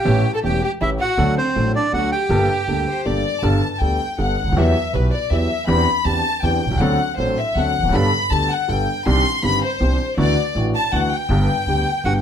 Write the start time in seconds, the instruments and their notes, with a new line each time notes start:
Already playing: violin section G4, bandoneon G5
0.04 grand piano A1 A2 E3 A3 C#4 G4, upright bass A1
0.36 violin section A4, bandoneon A5
0.43 grand piano E1 E2 E3 A3 C#4 G4, upright bass E1, violin section G4, bandoneon G5
0.63 violin section G4, bandoneon G5
0.81 grand piano A1 A2 E3 A3 C#4 G4, upright bass A1, violin section E4, bandoneon E5
1.00 violin section F#4, bandoneon F#5
1.18 upright bass D2, grand piano D2 D3 F#3 A3 D4 A4
1.37 violin section C4, bandoneon C5
1.55 upright bass A1, grand piano A1 A2 F#3 A3 D4 A4
1.75 violin section D4, bandoneon D5
1.93 upright bass D2, grand piano D2 D3 F#3 A3 D4 A4, violin section F#4, bandoneon F#5
2.12 violin section G4, bandoneon G5
2.29 upright bass G1, grand piano G1 G2 G3 A#3 D4 A4
2.67 upright bass D2, grand piano D2 D3 G3 A#3 D4 A4
2.87 violin section C5
3.05 grand piano G1 G2 G3 A#3 D4 A4, upright bass G1, violin section D5
3.41 upright bass G1, grand piano G1 G2 G3 B3 D4 A4, violin section A5
3.73 violin section A5
3.80 upright bass D2, grand piano D2 D3 G3 B3 D4 A4, violin section G5
4.18 upright bass G1, grand piano G1 G2 G3 B3 D4 A4, violin section F#5
4.42 grand piano C#2, upright bass C#2
4.47 upright bass D2, grand piano D2
4.52 upright bass D#2, grand piano D#2
4.56 grand piano E2 E3 F#3 B3 E4 G4, upright bass E2, violin section E5
4.93 grand piano B1 B2 F#3 B3 E4 G4, upright bass B1, violin section B4
5.13 violin section D5
5.30 upright bass E2, grand piano E2 E3 F#3 B3 E4 G4, violin section E5
5.67 grand piano E2 E3 C4 D4 G4, upright bass E2, violin section B5
6.05 upright bass E2, grand piano E2 E3 C4 D4 G4, violin section A5
6.42 upright bass E2, grand piano E2 E3 C4 D4 G4, violin section G5
6.65 upright bass B1, grand piano B1
6.71 upright bass C2, grand piano C2
6.75 upright bass C#2, grand piano C#2, violin section F#5
6.80 upright bass D2, grand piano D2 D3 F#3 C4 D4 A4
7.17 upright bass A1, grand piano A1 A2 F#3 C4 D4 A4, violin section C5
7.38 violin section E5
7.55 upright bass D2, grand piano D2 D3 F#3 C4 D4 A4, violin section F#5
7.79 upright bass E1, grand piano E2
7.83 upright bass F1, grand piano F2
7.88 upright bass F#1, grand piano F#2
7.93 grand piano G1 G2 G3 B3 D4 A4, upright bass G1, violin section B5
8.30 upright bass D2, grand piano D2 D3 G3 B3 D4 A4, violin section A5
8.51 violin section F#5
8.68 upright bass G1, grand piano G1 G2 G3 B3 D4 A4, violin section G5
9.06 upright bass C2, grand piano C2 C3 D#3 C4 D4 G4, violin section C6
9.43 grand piano G1 G2 D#3 C4 D4 G4, upright bass G1, violin section B5
9.64 violin section C5
9.80 upright bass C2, grand piano C2 C3 D#3 C4 D4 G4
10.17 upright bass D2, grand piano D2 D3 E3 A3 D4 F#4, violin section D5
10.55 upright bass A1, grand piano A1 A2 E3 A3 D4 F#4
10.75 violin section A5
10.92 upright bass D2, grand piano D2 D3 E3 A3 D4 F#4, violin section F#5
11.14 violin section G5
11.29 upright bass G1, grand piano G1 G2 D3 G3 B3 G4
11.66 upright bass D2, grand piano D2 D3 G3 B3 G4
12.04 upright bass G1, grand piano G1 G2 D3 G3 B3 G4, violin section F#4, bandoneon F#5